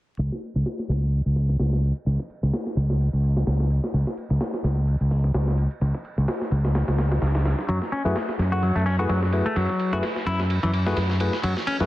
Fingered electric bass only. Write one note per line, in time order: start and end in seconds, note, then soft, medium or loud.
0.19 0.29 C#2 loud
0.55 0.63 C#2 medium
0.89 1.20 C#2 loud
1.26 1.55 C#2 medium
1.60 1.91 C#2 medium
2.06 2.16 C#2 loud
2.43 2.51 C#2 medium
2.77 3.08 C#2 medium
3.13 3.43 C#2 medium
3.47 3.78 C#2 medium
3.94 4.04 C#2 medium
4.30 4.38 C#2 medium
4.64 4.95 C#2 loud
5.01 5.30 C#2 medium
5.35 5.66 C#2 medium
5.81 5.91 C#2 loud
6.18 6.26 C#2 medium
6.52 6.83 C#2 medium
6.88 7.18 C#2 medium
7.22 7.53 C#2 medium
7.69 7.79 F#2 loud
8.05 8.13 F#2 medium
8.39 8.70 F#2 loud
8.76 9.05 F#2 medium
9.09 9.41 F#2 medium
9.56 9.66 F#2 loud
9.93 10.01 F#2 medium
10.27 10.58 F#2 loud
10.63 10.93 F#2 medium
10.97 11.28 F#2 medium
11.44 11.54 F#2 loud
11.80 11.86 F#2 medium